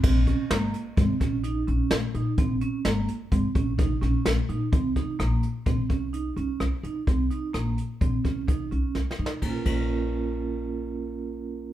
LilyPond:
<<
  \new Staff \with { instrumentName = "Vibraphone" } { \time 5/4 \key bes \minor \tempo 4 = 128 c'8 des'8 bes4 c'8 des'8 ees'8 des'4 ees'8 | c'8 des'8 bes4 c'8 des'8 ees'8 des'4 ees'8 | c'8 ees'8 bes4 c'8 des'8 ees'8 des'4 ees'8 | c'8 ees'8 bes4 c'8 des'8 ees'8 des'4 ees'8 |
<bes des' f' bes'>8 <bes des' f' bes'>1~ <bes des' f' bes'>8 | }
  \new Staff \with { instrumentName = "Upright bass" } { \clef bass \time 5/4 \key bes \minor bes,,8 r8 aes,,8 r8 aes,,16 r16 bes,,4 bes,,16 r16 bes,,16 r16 bes,16 r16 | bes,,8 r8 aes,,8 r8 aes,,16 r16 bes,,4 bes,,16 r16 bes,,16 r16 bes,16 r16 | c,8 r8 bes,,8 r8 bes,,16 r16 c,4 c,16 r16 c,16 r16 c16 r16 | c,8 r8 bes,,8 r8 bes,,16 r16 c,4 c,16 r16 c,16 r16 c16 r16 |
bes,,8 bes,,1~ bes,,8 | }
  \new DrumStaff \with { instrumentName = "Drums" } \drummode { \time 5/4 <cymc bd>8 <hh bd>8 <hh sn>8 hh8 <hh bd>8 <hh bd sn>8 hh8 hh8 <hh sn>8 hh8 | <hh bd>8 hh8 <hh sn>8 hh8 <hh bd>8 <hh bd>8 <hh bd>8 <hh sn>8 <hh sn>8 hh8 | <hh bd>8 <hh bd>8 <hh ss>8 hh8 <hh bd>8 <hh bd>8 hh8 hh8 <hh ss>8 hh8 | <hh bd>8 hh8 <hh ss>8 hh8 <hh bd>8 <hh bd>8 <hh bd>8 hh8 \tuplet 3/2 { sn8 sn8 sn8 } |
<bd cymr>8 <bd cymr>8 r4 r4 r4 r4 | }
>>